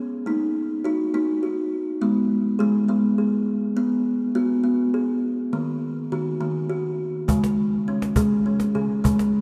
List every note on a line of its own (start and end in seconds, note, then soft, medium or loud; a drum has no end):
0.00 0.16 C#4 medium
0.00 0.26 G#4 medium
0.26 0.85 A#3 medium
0.26 0.78 D#4 medium
0.84 1.11 D#4 medium
0.84 1.14 F#4 medium
1.14 1.43 A#3 medium
1.14 1.91 D#4 medium
1.43 2.02 F#4 medium
2.02 2.53 G#3 medium
2.02 2.60 B3 medium
2.59 2.86 G#3 medium
2.59 2.89 G#4 medium
2.88 3.66 G#3 medium
2.88 3.18 B3 medium
3.18 3.77 G#4 medium
3.77 4.28 B3 medium
4.35 4.61 B3 medium
4.35 4.65 F#4 medium
4.64 5.41 B3 medium
4.94 5.53 G#4 medium
5.53 6.04 D#3 medium
5.53 6.12 A#3 medium
6.12 6.37 D#3 medium
6.12 6.41 F#4 medium
6.41 7.17 D#3 medium
6.41 6.70 A#3 medium
6.70 7.28 F#4 medium
7.28 7.80 C#3 medium
7.28 7.87 G#3 medium
7.28 cajon bass medium
7.44 cajon slap soft
7.88 8.13 C#4 medium
8.02 cajon slap soft
8.16 8.68 G#3 medium
8.16 8.46 G#4 medium
8.16 cajon bass medium
8.46 8.75 C#4 medium
8.60 cajon slap soft
8.75 9.01 C#3 medium
8.75 9.04 G#4 medium
9.04 9.41 C#3 medium
9.04 9.41 G#3 medium
9.04 cajon bass medium
9.19 cajon slap soft